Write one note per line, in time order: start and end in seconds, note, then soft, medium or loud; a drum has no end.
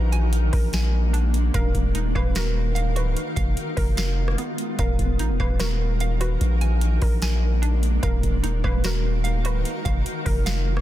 0.00 0.51 A#1 loud
0.00 1.53 G#3 medium
0.00 1.53 A#3 medium
0.00 1.53 D4 medium
0.12 0.72 G#5 loud
0.12 closed hi-hat medium
0.33 closed hi-hat medium
0.53 1.50 A#1 loud
0.53 1.50 A#4 medium
0.53 kick medium
0.53 open hi-hat medium
0.73 1.55 G#5 loud
0.73 snare loud
0.73 closed hi-hat medium
1.13 1.54 D4 medium
1.13 closed hi-hat medium
1.34 closed hi-hat medium
1.54 1.74 D#1 loud
1.54 3.15 D#3 medium
1.54 3.15 D#4 medium
1.54 3.15 F#4 medium
1.54 2.11 A#4 loud
1.54 3.15 A#4 medium
1.54 2.14 F5 loud
1.54 3.15 F5 medium
1.54 kick loud
1.54 closed hi-hat medium
1.75 2.14 D#1 loud
1.75 kick loud
1.75 closed hi-hat medium
1.95 3.17 D#4 medium
1.95 closed hi-hat medium
2.15 2.98 D#1 loud
2.15 2.34 B4 medium
2.15 2.74 F5 loud
2.15 kick loud
2.15 cross-stick loud
2.35 2.95 F#4 medium
2.35 2.93 A#4 loud
2.35 snare loud
2.35 closed hi-hat medium
2.75 3.16 F5 loud
2.75 closed hi-hat medium
2.96 3.16 D1 loud
2.96 3.16 F#4 medium
2.96 3.16 B4 medium
2.96 closed hi-hat medium
3.17 4.77 G#3 medium
3.17 4.77 B3 medium
3.17 4.77 F4 medium
3.17 closed hi-hat medium
3.36 3.56 F1 loud
3.36 3.96 F5 loud
3.36 kick medium
3.36 closed hi-hat medium
3.57 closed hi-hat medium
3.77 4.36 F1 loud
3.77 4.74 A#4 medium
3.77 kick loud
3.77 open hi-hat medium
3.97 4.78 F5 loud
3.97 snare loud
3.97 closed hi-hat medium
4.28 cross-stick loud
4.38 4.79 B3 medium
4.38 closed hi-hat medium
4.58 closed hi-hat medium
4.79 4.98 D#1 loud
4.79 6.39 D#3 medium
4.79 6.39 D#4 medium
4.79 6.39 F#4 medium
4.79 5.36 A#4 medium
4.79 6.39 A#4 medium
4.79 6.39 F5 medium
4.79 5.39 F5 loud
4.79 kick loud
4.79 closed hi-hat medium
4.99 5.21 D#1 loud
4.99 kick loud
4.99 closed hi-hat medium
5.19 5.31 A#1 loud
5.19 6.41 D#4 medium
5.19 closed hi-hat medium
5.29 5.39 D#1 loud
5.40 6.37 D#1 loud
5.40 5.59 B4 medium
5.40 6.00 F5 loud
5.40 kick loud
5.40 cross-stick loud
5.60 6.20 F#4 medium
5.60 6.17 A#4 loud
5.60 snare loud
5.60 closed hi-hat medium
6.00 6.41 F5 loud
6.00 closed hi-hat medium
6.21 6.41 F#4 medium
6.21 6.40 B4 medium
6.21 closed hi-hat medium
6.41 6.99 A#1 loud
6.41 8.02 G#3 medium
6.41 8.02 A#3 medium
6.41 8.02 D4 medium
6.41 closed hi-hat medium
6.61 7.21 G#5 loud
6.61 closed hi-hat medium
6.81 closed hi-hat medium
7.02 7.99 A#1 loud
7.02 7.99 A#4 medium
7.02 kick loud
7.02 open hi-hat medium
7.22 8.03 G#5 loud
7.22 snare loud
7.22 closed hi-hat medium
7.62 8.03 D4 medium
7.62 closed hi-hat medium
7.83 closed hi-hat medium
8.03 8.23 D#1 loud
8.03 9.64 D#3 medium
8.03 9.64 D#4 medium
8.03 9.64 F#4 medium
8.03 8.60 A#4 loud
8.03 9.64 A#4 medium
8.03 8.63 F5 loud
8.03 9.64 F5 medium
8.03 kick loud
8.03 closed hi-hat medium
8.23 8.62 D#1 loud
8.23 kick medium
8.23 closed hi-hat medium
8.43 9.65 D#4 medium
8.43 closed hi-hat medium
8.64 9.46 D#1 loud
8.64 8.83 B4 medium
8.64 9.23 F5 medium
8.64 kick loud
8.64 cross-stick loud
8.84 9.43 F#4 medium
8.84 9.42 A#4 loud
8.84 snare loud
8.84 closed hi-hat medium
9.24 9.65 F5 loud
9.24 closed hi-hat medium
9.45 9.64 D1 loud
9.45 9.65 F#4 medium
9.45 9.65 B4 medium
9.45 closed hi-hat medium
9.65 10.81 G#3 medium
9.65 10.81 B3 medium
9.65 10.81 F4 medium
9.65 closed hi-hat medium
9.85 10.05 F1 loud
9.85 10.45 F5 loud
9.85 kick medium
9.85 closed hi-hat medium
10.06 closed hi-hat medium
10.26 10.81 F1 loud
10.26 10.81 A#4 medium
10.26 kick loud
10.26 open hi-hat medium
10.46 10.81 F5 loud
10.46 snare loud
10.46 closed hi-hat medium
10.77 cross-stick loud